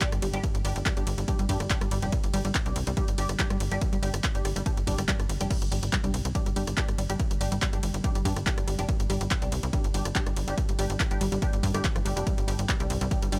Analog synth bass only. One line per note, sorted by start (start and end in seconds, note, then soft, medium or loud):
0.12 0.20 G1 medium
0.22 0.31 G1 loud
0.33 0.41 G1 medium
0.55 0.62 G1 medium
0.65 0.73 G1 loud
0.76 0.83 G1 medium
0.97 1.04 G1 medium
1.07 1.15 G1 loud
1.18 1.26 G1 medium
1.39 1.47 G1 medium
1.49 1.58 G2 loud
1.60 1.68 G1 medium
1.81 1.89 G1 medium
1.91 2.00 G1 loud
2.03 2.10 F1 medium
2.24 2.31 G1 medium
2.34 2.42 G1 loud
2.45 2.52 G1 medium
2.66 2.73 C2 medium
2.76 2.84 C2 loud
2.87 2.95 C2 medium
3.08 3.16 G1 medium
3.18 3.27 G1 loud
3.29 3.37 G1 medium
3.50 3.58 G1 medium
3.60 3.69 G1 loud
3.72 3.79 G1 medium
3.93 4.00 G1 medium
4.03 4.11 G1 loud
4.14 4.21 G1 medium
4.35 4.42 G1 medium
4.45 4.53 G1 loud
4.56 4.64 G1 loud
4.77 4.85 G1 medium
4.87 4.96 G1 loud
4.98 5.06 G1 medium
5.19 5.27 G1 medium
5.29 5.38 G1 loud
5.41 5.48 F1 medium
5.62 5.69 G1 medium
5.72 5.80 G1 loud
5.83 5.90 G1 medium
6.04 6.11 C2 medium
6.14 6.22 C2 loud
6.25 6.33 C2 loud
6.46 6.54 G1 medium
6.56 6.65 G1 loud
6.67 6.75 G1 medium
6.88 6.96 G1 medium
6.98 7.07 G1 loud
7.10 7.17 G1 medium
7.31 7.38 G1 medium
7.41 7.49 G1 loud
7.52 7.59 G1 medium
7.73 7.81 G1 medium
7.83 7.91 G1 loud
7.94 8.02 G1 medium
8.15 8.23 G1 medium
8.25 8.34 G2 loud
8.36 8.44 G1 medium
8.57 8.65 G1 medium
8.68 8.76 G1 loud
8.79 8.86 F1 medium
9.00 9.07 G1 medium
9.10 9.18 G1 loud
9.21 9.28 G1 medium
9.42 9.50 C2 medium
9.52 9.60 C2 loud
9.63 9.71 C2 medium
9.84 9.92 G1 medium
9.94 10.03 G1 loud
10.05 10.13 G1 medium
10.27 10.34 G1 medium
10.37 10.45 G1 loud
10.48 10.55 G1 medium
10.69 10.76 G1 medium
10.79 10.87 G1 loud
10.90 10.97 G1 medium
11.11 11.19 G1 medium
11.21 11.29 G1 loud
11.32 11.40 G1 medium
11.53 11.61 G1 medium
11.63 11.72 G2 loud
11.74 11.82 G1 medium
11.95 12.03 G1 medium
12.05 12.14 G1 loud
12.16 12.24 F1 medium
12.38 12.45 G1 medium
12.48 12.56 G1 loud
12.59 12.67 G1 medium
12.80 12.88 C2 medium
12.90 12.99 C2 loud
13.01 13.09 C2 medium
13.22 13.30 G1 medium
13.33 13.39 G1 loud